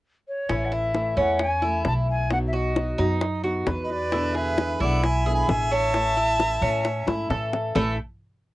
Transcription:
0.28 C#5
0.49 A1 E3 A3 C#4 E4, high bongo
0.65 F#5
0.72 E4 E5, high bongo
0.94 E3 A3 C#4 E4, high bongo
1.16 E2 A3 C#4 E4 F#5, high bongo
1.39 G#5, muted nylon-string guitar stroke, high bongo
1.62 A3 C#4 E4, high bongo
1.84 B1 E3 A3 C#4 E4 A5, high bongo, low bongo
2.10 G#5
2.30 B2 F#3 B3 D#4 F#4 F#5, high bongo
2.48 E5
2.53 F#4 D#5, high bongo
2.75 F#3 B3 D#4 F#4, high bongo
2.98 F#2 F#3 B3 D#4 F#4, high bongo
3.21 muted nylon-string guitar stroke, high bongo
3.44 F#3 B3 D#4 F#4
3.66 E2 F#3 B3 D#4 F#4 B4, high bongo, low bongo
3.83 B4 D#5
3.90 B4 D5, high bongo
4.12 B2 D3 G#3 B3 E4, high bongo
4.35 G#4 B4 E5, high bongo
4.57 D3 G#3 B3 E4, high bongo
4.80 B1 D3 G#3 B3 E4 D5 F#5, high bongo
5.03 E5 G#5, muted nylon-string guitar stroke, high bongo
5.26 D3 G#3 B3 E4 G#4, high bongo
5.34 G#5 B5
5.48 A1 D3 G#3 B3 E4 E5 G#5, high bongo, low bongo
5.71 C#4 E5 A5
5.94 E3 A3 C#4 E4, high bongo
6.17 E4, high bongo
6.39 E3 A3 C#4 E4, high bongo
6.62 A2 A3 C#4 E4, high bongo
6.84 muted nylon-string guitar stroke, high bongo
7.06 G#2 A3 C#4 E4, high bongo
7.30 A2 E3 A3 C#4 E4 A4, low bongo
7.53 low bongo
7.75 A1 A2 E3 A3 C#4 E4 A4, low bongo

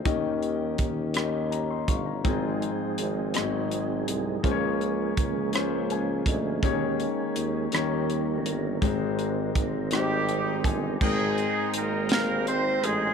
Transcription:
0.05 D#2 D#3 C#4 D#4 G4 A#4 D#5, kick, closed hi-hat
0.43 closed hi-hat
0.78 D#2, kick, closed hi-hat
1.14 C#4 D#4 G4 A#4 C#5, cross-stick, closed hi-hat
1.23 D#5
1.52 C#5 A#5, closed hi-hat
1.70 D#5 C6
1.88 G1 F5 C#6, kick, closed hi-hat
2.06 C#5 A#5
2.24 G#1 G#2 F3 G#3 C4 D#4 F4 G#4 D#5, kick, closed hi-hat
2.62 closed hi-hat
2.98 G#1, closed hi-hat
3.34 G#1 G#2 F#3 B3 D#4 F#4 G#4 D#5, cross-stick, closed hi-hat
3.41 C4
3.71 closed hi-hat
4.07 C2, closed hi-hat
4.43 C#2 C#3 F3 G#3 A#3 C#4 F4 G#4 C5, kick, closed hi-hat
4.51 C#5
4.81 closed hi-hat
5.17 C#2, kick, closed hi-hat
5.53 A#3 C#4 F4 G#4 C5, cross-stick, closed hi-hat
5.90 G#5, closed hi-hat
6.26 D2 D#5, kick, closed hi-hat
6.63 D#2 D#3 A#3 C#4 D#4 G4 C#5, kick, closed hi-hat
6.70 G#4
7.00 closed hi-hat
7.36 D#2, closed hi-hat
7.72 D#2 D#3 G3 A#3 C#4 D#4 G4 A#4 C#5, cross-stick, closed hi-hat
8.10 closed hi-hat
8.46 G1, closed hi-hat
8.81 G#1 G#2 G#3 C4 D#4 G4 C5, kick, closed hi-hat
9.19 closed hi-hat
9.55 G#1, kick, closed hi-hat
9.91 G3 G#3 C4 D#4 G4 A#4, cross-stick, closed hi-hat
9.99 C5
10.28 G5, closed hi-hat
10.64 G1 G#5, kick, closed hi-hat
11.01 G#1 G#2 G#3 C4 D#4 G#4 A#4 C5 G5 A#5, kick, crash
11.38 closed hi-hat
11.74 G#1 A#3 A#4, closed hi-hat
12.09 G#3 A#3 C4 D#4 G4 A#4 B4, snare, closed hi-hat
12.18 C5
12.47 C4 C5, closed hi-hat
12.83 A1 G#3 G#4, closed hi-hat

